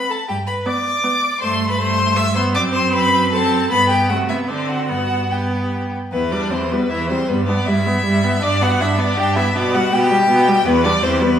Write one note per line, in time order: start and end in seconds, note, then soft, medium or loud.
0.00 0.20 C4 medium
0.00 0.13 B5 medium
0.10 0.17 A4 medium
0.10 0.28 A5 medium
0.28 0.59 G2 medium
0.28 0.36 G4 medium
0.28 0.36 G5 medium
0.47 0.68 B4 medium
0.47 0.54 B5 medium
0.66 0.95 B3 medium
0.66 1.41 D5 medium
0.66 1.40 D6 medium
1.04 1.32 B3 medium
1.40 2.56 G2 medium
1.40 1.76 A3 medium
1.40 1.49 C5 medium
1.40 1.68 C6 medium
1.69 1.80 B4 medium
1.69 1.80 B5 medium
1.78 2.16 A3 medium
1.78 2.18 C5 medium
1.78 2.18 C6 loud
2.16 2.24 A3 medium
2.16 2.34 E5 medium
2.16 2.35 E6 loud
2.35 2.56 B3 medium
2.35 2.43 C5 medium
2.35 2.43 C6 loud
2.54 3.70 F#2 medium
2.54 3.32 C4 medium
2.54 2.62 D5 medium
2.54 2.62 D6 loud
2.73 2.94 C5 medium
2.73 2.93 C6 medium
2.93 3.34 B4 medium
2.93 3.32 B5 loud
3.32 3.71 C4 medium
3.32 3.72 A4 medium
3.32 3.70 A5 medium
3.71 4.12 G2 medium
3.71 4.11 B3 medium
3.71 3.92 B4 medium
3.71 3.89 B5 loud
3.90 4.11 G4 medium
3.90 4.08 G5 medium
4.09 4.49 C3 medium
4.09 4.31 A3 medium
4.09 4.28 F#4 medium
4.09 4.17 F#5 medium
4.29 4.50 B3 medium
4.29 4.37 E4 medium
4.29 4.37 E5 medium
4.48 4.91 D3 medium
4.48 4.91 C4 medium
4.48 4.72 D4 medium
4.48 4.70 D5 medium
4.68 4.90 F#4 medium
4.68 4.88 F#5 medium
4.89 5.93 G2 medium
4.89 5.31 B3 soft
4.89 5.33 F#4 medium
4.89 5.32 F#5 medium
5.31 5.92 B3 medium
5.31 5.93 G4 medium
5.31 5.92 G5 medium
6.12 6.47 E2 medium
6.12 6.33 E3 medium
6.12 6.20 B3 medium
6.12 6.33 B4 medium
6.32 6.54 G3 medium
6.32 6.52 D4 medium
6.32 6.52 D5 medium
6.51 6.86 E2 medium
6.51 6.74 E3 medium
6.51 6.69 C4 medium
6.51 6.72 C5 medium
6.70 6.91 G3 medium
6.70 6.89 B3 medium
6.70 6.91 B4 medium
6.89 7.25 E2 medium
6.89 7.12 E3 medium
6.89 7.09 E4 medium
6.89 7.09 E5 medium
7.09 7.29 G3 medium
7.09 7.28 C4 medium
7.09 7.30 C5 medium
7.28 7.62 G2 medium
7.28 7.50 G3 medium
7.28 7.37 B3 medium
7.28 7.46 B4 medium
7.46 7.69 B3 medium
7.46 7.55 D4 medium
7.46 7.67 D5 medium
7.65 8.00 G2 medium
7.65 7.88 G3 medium
7.65 8.40 E4 medium
7.65 8.44 E5 medium
7.86 8.04 B3 medium
8.05 8.38 G2 medium
8.05 8.26 G3 medium
8.24 8.43 B3 medium
8.42 8.76 G2 medium
8.42 8.63 D4 medium
8.42 8.64 D5 loud
8.61 8.82 B3 medium
8.61 8.82 F#4 medium
8.61 8.82 F#5 medium
8.80 9.13 G2 medium
8.80 9.00 D4 medium
8.80 8.97 E4 medium
8.80 9.00 E5 medium
8.98 9.16 B3 medium
8.98 9.19 D4 medium
8.98 9.19 D5 medium
9.17 9.52 G2 medium
9.17 9.38 D4 medium
9.17 9.37 G4 medium
9.17 9.35 G5 loud
9.36 9.55 B3 medium
9.36 9.54 E4 medium
9.36 9.57 E5 medium
9.55 9.89 B2 medium
9.55 9.76 B3 medium
9.55 9.63 D4 medium
9.55 9.76 D5 medium
9.74 9.95 G3 medium
9.74 9.92 F#4 medium
9.74 9.94 F#5 loud
9.92 10.25 B2 medium
9.92 10.13 B3 medium
9.92 10.64 G4 medium
9.92 10.67 G5 loud
10.11 10.30 G3 medium
10.29 10.61 B2 medium
10.29 10.49 B3 medium
10.48 10.66 G3 medium
10.65 10.99 E2 medium
10.65 10.86 E3 medium
10.65 10.73 B3 medium
10.65 10.85 B4 loud
10.84 11.04 G3 medium
10.84 10.92 D4 medium
10.84 11.04 D5 loud
11.03 11.36 E2 medium
11.03 11.22 E3 medium
11.03 11.23 C4 medium
11.03 11.22 C5 loud
11.21 11.39 G3 medium
11.21 11.39 B3 medium
11.21 11.39 B4 loud